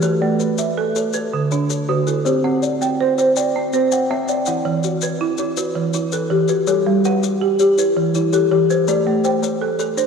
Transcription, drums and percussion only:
0.02 maracas
0.40 maracas
0.58 maracas
0.96 maracas
1.13 maracas
1.51 maracas
1.70 maracas
2.07 maracas
2.26 maracas
2.63 maracas
2.82 maracas
3.18 maracas
3.36 maracas
3.73 maracas
3.92 maracas
4.28 maracas
4.46 maracas
4.83 maracas
5.01 maracas
5.37 maracas
5.57 maracas
5.94 maracas
6.12 maracas
6.48 maracas
6.67 maracas
7.04 maracas
7.23 maracas
7.59 maracas
7.78 maracas
8.15 maracas
8.33 maracas
8.70 maracas
8.88 maracas
9.24 maracas
9.43 maracas
9.79 maracas
9.98 maracas

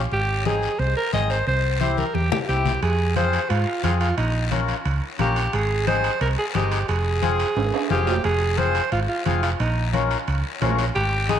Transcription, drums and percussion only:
0.12 high conga, long guiro
0.46 high conga, short guiro
0.63 short guiro
0.79 high conga, long guiro
1.13 high conga, short guiro
1.30 short guiro
1.47 high conga, long guiro
1.81 high conga, short guiro
1.98 high conga, short guiro
2.15 high conga, long guiro
2.32 low conga
2.49 short guiro
2.66 low conga, short guiro
2.82 high conga, high timbale, long guiro
3.16 high conga, high timbale, short guiro
3.33 high timbale, short guiro
3.50 high conga, high timbale, long guiro
3.84 high conga, high timbale, short guiro
4.01 high timbale, short guiro
4.18 high timbale, long guiro
4.52 high conga, high timbale, short guiro
4.68 high timbale, short guiro
4.85 high conga, high timbale, long guiro
5.19 high conga, high timbale, short guiro
5.36 high timbale, short guiro
5.53 high conga, high timbale, long guiro
5.87 high conga, high timbale, short guiro
6.04 high timbale, short guiro
6.21 high conga, high timbale, long guiro
6.55 high conga, high timbale, short guiro
6.71 high timbale, short guiro
6.88 high conga, high timbale, long guiro
7.23 high conga, high timbale, short guiro
7.40 high timbale, short guiro
7.57 high conga, high timbale, long guiro
7.74 high timbale
7.90 high conga, short guiro
8.07 low timbale, short guiro
8.24 high conga, high timbale, long guiro
8.58 high conga, high timbale, short guiro
8.75 high timbale, short guiro
8.92 high conga, high timbale, long guiro
9.26 high conga, high timbale, short guiro
9.43 high timbale, short guiro
9.60 high conga, high timbale, long guiro
9.94 high conga, high timbale, short guiro
10.11 high timbale, short guiro
10.28 high conga, high timbale, long guiro
10.61 high conga, high timbale, low timbale, short guiro
10.78 high timbale, short guiro
10.95 high conga, high timbale, long guiro
11.29 high conga, high timbale, short guiro

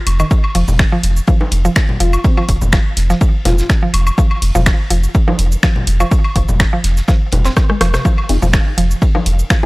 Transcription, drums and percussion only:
0.07 open hi-hat, ride, high woodblock
0.20 cabasa, high woodblock
0.31 kick, ride, cabasa
0.44 high woodblock
0.55 open hi-hat
0.68 low conga, cabasa
0.79 finger snap, kick, snare, ride, cabasa
1.03 open hi-hat, ride
1.17 cabasa
1.27 kick, ride, cabasa
1.41 low bongo
1.51 open hi-hat, ride
1.65 cabasa
1.76 finger snap, kick, snare, ride, cabasa
1.89 low conga
2.00 open hi-hat, ride
2.13 cabasa, high woodblock
2.24 kick, ride, cabasa
2.37 ride, high woodblock
2.49 kick, open hi-hat, ride
2.62 low conga, cabasa
2.72 finger snap, kick, snare, ride, cabasa
2.96 snare, open hi-hat, ride
3.10 snare, cabasa
3.21 kick, ride, cabasa
3.45 snare, open hi-hat, ride, low bongo, low conga
3.58 snare, cabasa
3.69 finger snap, kick, snare, ride, cabasa
3.94 open hi-hat, ride, high woodblock
4.07 cabasa, high woodblock
4.18 kick, ride, cabasa
4.31 high woodblock
4.42 open hi-hat
4.55 low conga, cabasa
4.66 finger snap, kick, snare, ride, cabasa
4.90 open hi-hat, ride
5.03 cabasa
5.15 kick, ride, cabasa
5.28 low bongo
5.39 open hi-hat, ride
5.52 cabasa
5.63 finger snap, kick, snare, ride, cabasa
5.76 low conga
5.87 open hi-hat, ride
6.00 cabasa, high woodblock
6.11 kick, ride, cabasa
6.24 ride, high woodblock
6.36 kick, open hi-hat, ride
6.49 low conga, cabasa
6.60 finger snap, kick, snare, ride, cabasa
6.84 snare, open hi-hat, ride
6.97 snare, cabasa
7.08 kick, snare, ride, cabasa
7.32 open hi-hat, ride, low bongo, low conga
7.44 snare, ride, cabasa
7.57 kick, cross-stick, snare, ride, cabasa
7.70 cross-stick
7.81 cross-stick, snare, open hi-hat, ride, high woodblock
7.94 cross-stick, snare, ride, cabasa, high woodblock
8.05 kick, ride, cabasa
8.18 high woodblock
8.29 open hi-hat
8.42 low conga, cabasa
8.53 finger snap, kick, snare, ride, cabasa
8.78 open hi-hat, ride
8.91 cabasa
9.02 kick, ride, cabasa
9.15 low bongo
9.26 open hi-hat, ride
9.39 cabasa
9.50 finger snap, kick, snare, ride, cabasa

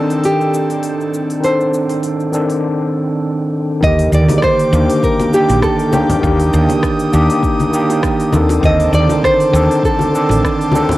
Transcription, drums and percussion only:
0.10 open hi-hat, cabasa
0.23 open hi-hat, cabasa
0.41 cabasa
0.54 cabasa
0.70 open hi-hat, cabasa
0.83 open hi-hat, cabasa
1.01 cabasa
1.14 cabasa
1.30 open hi-hat, cabasa
1.44 open hi-hat, cabasa
1.61 cabasa
1.74 cabasa
1.89 open hi-hat, cabasa
2.03 open hi-hat, cabasa
2.20 cabasa
2.33 cabasa
2.50 open hi-hat, cabasa
3.83 kick, cabasa
3.99 open hi-hat, cabasa
4.13 cabasa
4.28 open hi-hat, high bongo, high conga, cabasa
4.42 kick, cross-stick, cabasa
4.60 open hi-hat, cabasa
4.73 cabasa
4.90 open hi-hat, cabasa
5.03 kick, cabasa
5.19 open hi-hat, high bongo, high conga, cabasa
5.34 cabasa
5.49 open hi-hat, high bongo, cabasa
5.62 kick, cross-stick, cabasa
5.79 open hi-hat, cabasa
5.93 high bongo, high conga, cabasa
6.09 open hi-hat, low conga, cabasa
6.23 kick, cabasa
6.40 open hi-hat, cabasa
6.53 cabasa
6.69 open hi-hat, high bongo, high conga, cabasa
6.83 kick, cross-stick, cabasa
6.99 open hi-hat, cabasa
7.13 cabasa
7.30 open hi-hat, cabasa
7.43 kick, cabasa
7.60 open hi-hat, high conga, cabasa
7.74 cabasa
7.90 open hi-hat, high bongo, cabasa
8.03 kick, cross-stick, cabasa
8.20 open hi-hat, cabasa
8.32 high conga, cabasa
8.49 open hi-hat, high bongo, cabasa
8.63 kick, cabasa
8.80 open hi-hat, cabasa
8.94 cabasa
9.09 open hi-hat, high bongo, high conga, cabasa
9.23 kick, cross-stick, cabasa
9.40 open hi-hat, cabasa
9.55 cabasa
9.71 open hi-hat, cabasa
9.83 kick, cabasa
9.99 open hi-hat, high bongo, high conga, cabasa
10.15 cabasa
10.29 open hi-hat, high bongo, cabasa
10.43 kick, cross-stick, cabasa
10.61 open hi-hat, cabasa
10.72 high bongo, high conga, cabasa
10.89 open hi-hat, low conga, cabasa

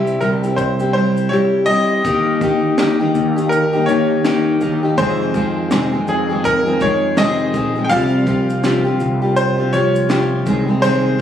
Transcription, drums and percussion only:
0.07 shaker
0.21 shaker
0.44 shaker
0.58 kick, shaker
0.80 shaker
1.17 shaker
2.05 kick, shaker
2.41 kick, shaker
2.78 snare, shaker
3.15 shaker
3.38 shaker
3.52 shaker
3.88 shaker
4.25 snare, shaker
4.61 shaker
4.98 kick, shaker
5.34 kick, shaker
5.71 snare, shaker
6.07 shaker
6.44 kick, shaker
6.81 kick, shaker
7.17 snare, shaker
7.54 kick, shaker
7.91 kick, shaker
8.27 kick, shaker
8.50 shaker
8.64 snare, shaker
9.00 shaker
9.37 shaker
9.73 shaker
9.95 shaker
10.10 snare, shaker
10.46 kick, shaker
10.83 shaker

